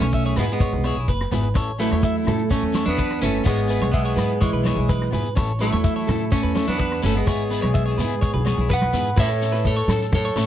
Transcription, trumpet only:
1.81 2.48 E4 medium
2.51 2.84 A4 medium
2.87 3.20 B4 medium
3.24 3.45 A4 medium
3.46 3.90 G#4 medium
3.94 4.38 G#4 medium
4.42 5.09 E4 medium
5.62 6.29 E4 medium
6.33 6.66 A4 medium
6.68 7.01 B4 medium
7.04 7.18 A4 medium
7.16 8.70 G#4 medium
8.74 9.16 B4 medium
9.21 9.63 C#5 medium
9.69 10.11 A4 medium
10.15 10.46 A4 medium

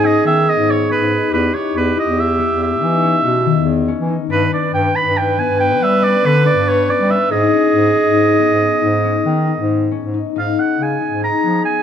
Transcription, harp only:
0.00 0.24 B3 medium
0.00 0.89 C#4 medium
0.00 0.46 D#4 medium
0.25 2.38 B3 medium
0.46 1.11 D#4 medium
0.90 3.02 C#4 medium
1.11 1.39 D#4 medium
1.33 1.60 E4 medium
1.54 2.03 D#4 medium
1.97 2.17 E4 medium
2.17 2.87 E4 medium
2.39 3.24 B3 medium
2.81 4.08 D#4 medium
3.03 3.88 C#4 medium
3.24 5.37 B3 medium
3.46 4.36 D#3 medium
3.88 4.36 C#4 medium
4.09 4.36 D#4 medium
4.30 4.58 D4 medium
4.52 5.01 C#4 medium
4.95 5.16 D4 medium
5.16 5.80 D4 medium
5.38 6.23 B3 medium
5.81 6.08 D4 medium
6.02 6.51 C#4 medium
6.23 8.39 B3 medium
6.45 6.94 D4 medium
6.88 7.15 C#4 medium
7.09 7.37 D4 medium
7.31 7.95 D#4 medium
7.53 9.04 C#4 medium
7.95 8.17 D#4 medium
8.17 8.81 D#4 medium
8.39 9.25 B3 medium
8.82 9.47 D#4 medium
9.04 9.91 C#4 medium
9.25 11.43 B3 medium
9.47 10.13 D#4 medium
9.91 10.57 C#4 medium
10.14 10.35 D#4 medium
10.36 11.00 D#4 medium
10.58 11.83 C#4 soft
11.00 11.22 D#4 medium
11.22 11.83 D#4 medium
11.43 11.83 B3 medium

